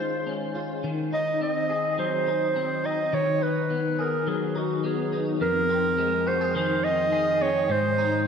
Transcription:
0.00 0.83 D#3 medium
0.00 1.98 G#3 medium
0.00 0.25 C#4 medium
0.00 0.54 F4 medium
0.00 0.51 C5 loud
0.00 1.69 C5 medium
0.27 0.90 C#4 medium
0.55 0.89 F4 soft
0.84 3.12 D#3 medium
1.13 2.27 D#4 medium
1.13 1.40 D#5 loud
1.41 2.55 C4 medium
1.41 1.95 D#5 medium
1.70 3.98 G#4 medium
1.98 4.02 F#3 medium
1.98 2.87 C5 medium
2.27 2.84 D#4 medium
2.56 3.18 C4 medium
2.84 3.41 D#4 medium
2.84 3.16 D#5 medium
3.13 5.44 D#3 medium
3.13 3.44 C#5 loud
3.41 4.55 D#4 medium
3.41 4.01 B4 medium
3.70 4.82 B3 medium
3.99 6.26 G#4 medium
3.99 4.30 A#4 medium
4.27 5.47 F#3 medium
4.27 4.59 G#4 medium
4.55 5.12 D#4 soft
4.55 4.87 F#4 medium
4.84 5.47 B3 medium
4.84 5.28 G#4 medium
5.13 5.69 D#4 soft
5.41 7.69 F2 medium
5.41 6.29 A#4 loud
5.69 6.83 C4 medium
5.98 8.26 G#3 medium
6.27 6.41 F#4 medium
6.27 6.55 C5 medium
6.41 7.11 G#4 medium
6.55 8.27 D#3 medium
6.55 6.86 C5 medium
6.84 7.40 C4 medium
6.84 7.44 D#5 loud
7.12 8.27 G#4 medium
7.41 7.75 C4 medium
7.41 7.73 C#5 loud
7.69 8.27 G#2 medium
7.69 8.27 C5 loud
7.98 8.27 D#4 medium

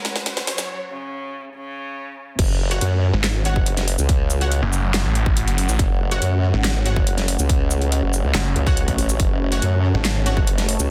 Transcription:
0.00 0.65 F#3 medium
0.00 0.39 G#3 loud
0.00 0.65 C#4 medium
0.00 0.65 F#4 medium
0.00 0.65 C#5 medium
0.00 0.65 F#5 medium
0.00 riser medium
0.05 snare medium
0.05 closed hi-hat soft
0.16 snare medium
0.26 snare loud
0.26 closed hi-hat medium
0.37 snare medium
0.37 closed hi-hat medium
0.47 0.76 F#3 medium
0.47 snare loud
0.47 open hi-hat loud
0.58 snare medium
0.58 shaker medium
0.90 1.45 C#3 loud
1.54 2.30 C#3 loud
2.39 2.80 F#1 loud
2.39 10.90 A3 medium
2.39 10.90 C#4 medium
2.39 10.90 F#4 medium
2.39 10.90 C#5 medium
2.39 9.18 F#5 medium
2.39 kick loud
2.39 closed hi-hat medium
2.39 crash loud
2.71 2.84 F#4 loud
2.71 2.84 C#5 medium
2.71 2.84 F#5 loud
2.71 closed hi-hat soft
2.81 3.12 F#2 loud
2.81 closed hi-hat medium
3.13 3.54 G#1 loud
3.24 snare loud
3.24 clap medium
3.24 closed hi-hat medium
3.45 3.59 F#4 loud
3.45 3.59 C#5 medium
3.45 3.59 F#5 loud
3.45 closed hi-hat soft
3.56 3.97 F#1 loud
3.56 kick loud
3.66 closed hi-hat medium
3.77 snare soft
3.77 closed hi-hat medium
3.88 open hi-hat medium
3.98 4.61 C#2 loud
3.98 shaker medium
4.09 kick loud
4.09 closed hi-hat medium
4.30 shaker medium
4.41 4.49 F#4 loud
4.41 4.49 C#5 medium
4.41 4.49 F#5 loud
4.41 closed hi-hat soft
4.52 closed hi-hat medium
4.62 5.03 F#1 loud
4.73 shaker medium
4.94 snare loud
4.94 clap medium
4.94 closed hi-hat medium
5.05 5.46 A1 loud
5.15 closed hi-hat medium
5.26 kick loud
5.37 closed hi-hat medium
5.47 5.67 F#1 loud
5.47 closed hi-hat medium
5.58 open hi-hat medium
5.69 5.78 A1 loud
5.69 shaker medium
5.79 6.20 F#1 loud
5.79 kick loud
5.79 closed hi-hat medium
6.11 6.24 F#4 loud
6.11 6.24 C#5 medium
6.11 6.24 F#5 loud
6.11 closed hi-hat soft
6.22 6.52 F#2 loud
6.22 closed hi-hat medium
6.54 6.95 G#1 loud
6.64 snare loud
6.64 clap medium
6.64 closed hi-hat medium
6.86 6.99 F#4 loud
6.86 6.99 C#5 medium
6.86 6.99 F#5 loud
6.86 closed hi-hat soft
6.96 7.37 F#1 medium
6.96 kick loud
7.07 closed hi-hat medium
7.18 snare soft
7.18 closed hi-hat medium
7.28 open hi-hat medium
7.39 8.01 C#2 loud
7.39 shaker medium
7.49 kick loud
7.49 closed hi-hat medium
7.71 shaker medium
7.82 closed hi-hat soft
7.92 closed hi-hat medium
8.03 8.22 F#1 medium
8.13 shaker medium
8.24 8.33 C#2 loud
8.34 8.54 F#1 loud
8.34 snare loud
8.34 clap medium
8.34 closed hi-hat medium
8.56 8.97 C#2 loud
8.56 closed hi-hat soft
8.67 9.49 F#4 medium
8.67 9.49 C#5 medium
8.67 9.49 F#5 medium
8.67 kick loud
8.77 closed hi-hat medium
8.88 kick medium
8.88 closed hi-hat medium
8.98 9.18 A1 medium
8.98 open hi-hat medium
9.09 shaker medium
9.20 9.61 F#1 loud
9.20 10.90 A5 medium
9.20 kick loud
9.20 closed hi-hat medium
9.52 9.65 F#4 loud
9.52 9.65 C#5 medium
9.52 9.65 F#5 loud
9.52 closed hi-hat soft
9.62 9.93 F#2 loud
9.62 closed hi-hat medium
9.94 10.35 G#1 loud
10.05 snare loud
10.05 clap medium
10.05 closed hi-hat medium
10.26 10.39 F#4 loud
10.26 10.39 C#5 medium
10.26 10.39 F#5 loud
10.26 closed hi-hat soft
10.37 10.78 F#1 loud
10.37 kick loud
10.47 closed hi-hat medium
10.58 snare soft
10.58 closed hi-hat medium
10.69 open hi-hat medium
10.79 10.90 C#2 loud
10.79 shaker medium

